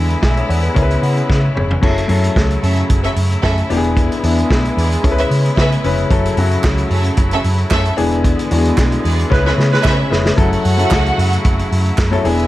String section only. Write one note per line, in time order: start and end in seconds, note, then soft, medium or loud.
0.00 0.75 D3 medium
0.00 1.81 G#3 medium
0.00 1.81 B3 medium
0.00 1.81 E4 medium
0.76 1.81 C#3 medium
1.82 3.68 C#3 medium
1.82 3.68 F#3 medium
1.82 3.67 A3 medium
1.82 10.33 E4 medium
3.69 5.02 D3 medium
3.69 6.07 G#3 medium
3.69 6.07 B3 medium
5.03 7.94 C#3 medium
6.10 7.96 F#3 medium
6.10 7.95 A3 medium
7.97 9.29 D3 medium
7.97 10.35 G#3 medium
7.97 10.35 B3 medium
9.31 10.37 C#3 medium
10.38 12.22 C#3 medium
10.38 12.22 F#3 medium
10.38 12.23 A3 medium
10.38 12.47 E4 medium
12.24 12.47 D3 medium
12.24 12.47 G#3 medium
12.24 12.47 B3 medium